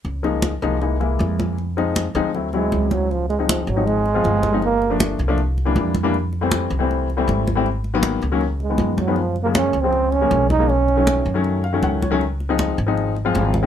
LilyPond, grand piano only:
<<
  \new Staff \with { instrumentName = "Grand piano" } { \time 4/4 \key des \major \tempo 4 = 158 r1 | r1 | r1 | r1 |
r1 | r1 | r1 | r2 r8 f''8 ges''8 des''8 |
r1 | }
  \new Staff \with { instrumentName = "Grand piano" } { \clef bass \time 4/4 \key des \major r8 <f aes bes ees'>8. r16 <f aes bes ees'>16 r16 <e gis bes dis'>16 r16 <e gis bes e'>4. | r8 <f aes c' ees'>8. r16 <f aes c' ees'>16 r16 <fis a c' e'>16 r16 <e fis c' e'>4. | r8. <f aes c' ees'>8. r16 <f aes c' ees'>8. r16 <f aes c' f'>8. r16 <f aes c' ees'>16 | r8. <f a bes d'>8. r16 <f a bes d'>16 r8. <e g bes d'>8. r16 <e g bes d'>16 |
r8. <e g a c'>8. r16 <e g a c'>8. r16 <e g a c'>8. r16 <e g a c'>16 | r8. <ees ges bes ces'>8. r16 <ees ges bes des'>16 r8. <ees f aes ces'>8. r16 <ees f aes ces'>16 | r8. <des f aes bes>8. r16 <des f aes c'>8. r16 <des f aes bes>8. r16 <des f aes bes>16 | r8. <ees ges a des'>8. r16 <ees ges a des'>8. r16 <ees ges a des'>8. r16 <ees ges a des'>16 |
r8. <f aes c' ees'>8. r16 <f aes c' ees'>8. r16 <f aes c' f'>8. r16 <f aes>16 | }
>>